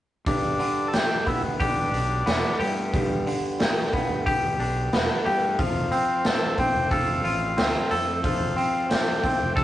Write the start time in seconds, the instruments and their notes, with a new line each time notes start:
0.26 fingered electric bass G1, clean electric guitar G2, transistor combo organ D4, kick, open hi-hat
0.59 clean electric guitar D3, open hi-hat
0.88 transistor combo organ A4
0.93 clean electric guitar G3, transistor combo organ G4, snare, open hi-hat
1.26 clean electric guitar B3, transistor combo organ E4, kick, open hi-hat
1.43 fingered electric bass G1
1.60 transistor combo organ D4, clean electric guitar G4, kick, open hi-hat
1.92 fingered electric bass B1, clean electric guitar D4, open hi-hat
2.26 fingered electric bass E1, clean electric guitar B3, snare, open hi-hat
2.59 fingered electric bass G2, clean electric guitar G4, open hi-hat
2.94 fingered electric bass G1, clean electric guitar G2, kick, open hi-hat
3.27 clean electric guitar D3, open hi-hat
3.60 clean electric guitar G3, snare, open hi-hat
3.93 clean electric guitar B3, kick, open hi-hat
4.10 fingered electric bass G1
4.26 clean electric guitar G4, kick, open hi-hat
4.60 fingered electric bass B1, clean electric guitar D4, open hi-hat
4.93 clean electric guitar B3, snare, open hi-hat
5.26 fingered electric bass G2, clean electric guitar G4, open hi-hat
5.59 fingered electric bass F1, clean electric guitar F3, transistor combo organ F4, kick, open hi-hat
5.91 clean electric guitar C4, open hi-hat
6.25 clean electric guitar F3, transistor combo organ A4, snare, open hi-hat
6.58 clean electric guitar C4, transistor combo organ G4, kick, open hi-hat
6.75 fingered electric bass F1
6.91 transistor combo organ F4, clean electric guitar A4, kick, open hi-hat
7.24 fingered electric bass A1, clean electric guitar F4, open hi-hat
7.57 fingered electric bass D2, clean electric guitar C4, snare, open hi-hat
7.91 fingered electric bass F2, clean electric guitar A4, open hi-hat
8.23 fingered electric bass F1, clean electric guitar F3, transistor combo organ F4, kick, open hi-hat
8.56 clean electric guitar C4, open hi-hat
8.89 clean electric guitar F3, transistor combo organ G4, snare, open hi-hat
9.23 clean electric guitar C4, kick, open hi-hat
9.41 fingered electric bass F1
9.56 clean electric guitar A4, transistor combo organ A4, kick, open hi-hat